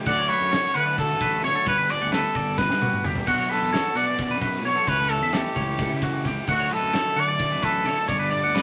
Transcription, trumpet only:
0.07 D5
0.29 C#5
0.75 B4
0.98 A4
1.44 C#5
1.68 B4
1.90 D5
2.13 A4
2.58 B4
3.29 F#4
3.51 A4
3.97 D5
4.66 C#5
4.88 B4
5.10 A4
5.34 G4
6.51 F#4
6.73 A4
7.20 D5
7.64 A4
8.09 D5

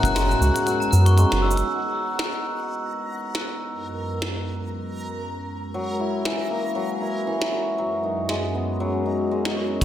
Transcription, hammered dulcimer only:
Already playing: E3 F#3 B3 E4 F#4
0.15 G#3
0.41 F#4
0.66 F#3
0.92 B3
1.17 G#3
1.43 D#4
5.74 F#3
6.00 E4
6.25 E3
6.50 A#3
6.75 F#3
7.02 E4
7.27 E3
7.52 F#4
7.78 F#3
8.03 D#4
8.29 G#3
8.55 B3
8.80 F#3
9.06 D#4
9.31 G#3
9.57 F#4

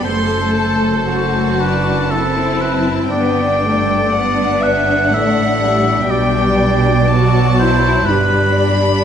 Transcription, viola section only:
0.07 A3
1.08 A3
1.61 D4
2.13 C4
3.14 B3
3.65 A3
4.14 B3
5.15 A3
5.63 G3
7.10 F#3
8.08 G3

